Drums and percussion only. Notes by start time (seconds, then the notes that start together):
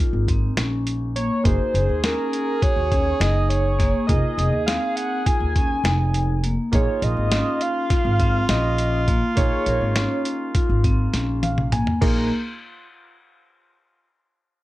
0.28 kick, closed hi-hat
0.57 snare, closed hi-hat
0.87 closed hi-hat
1.16 closed hi-hat
1.45 kick, closed hi-hat
1.75 closed hi-hat
2.04 snare, closed hi-hat
2.33 closed hi-hat
2.62 kick, closed hi-hat
2.92 kick, closed hi-hat
3.21 snare, closed hi-hat
3.50 closed hi-hat
3.80 kick, snare, closed hi-hat
4.09 kick, closed hi-hat
4.39 closed hi-hat
4.68 snare, closed hi-hat
4.97 closed hi-hat
5.26 kick, closed hi-hat
5.56 kick, closed hi-hat
5.85 snare, closed hi-hat
6.14 closed hi-hat
6.44 closed hi-hat
6.73 kick, closed hi-hat
7.02 closed hi-hat
7.32 snare, closed hi-hat
7.61 closed hi-hat
7.90 kick, snare, closed hi-hat
8.20 kick, closed hi-hat
8.49 snare, closed hi-hat
8.78 closed hi-hat
9.08 kick, closed hi-hat
9.37 kick, closed hi-hat
9.66 closed hi-hat
9.96 snare, closed hi-hat
10.25 closed hi-hat
10.55 kick, closed hi-hat
10.84 kick, closed hi-hat
11.14 snare, closed hi-hat
11.43 closed hi-hat, high tom
11.58 mid tom
11.72 closed hi-hat, mid tom
11.87 floor tom
12.02 kick, crash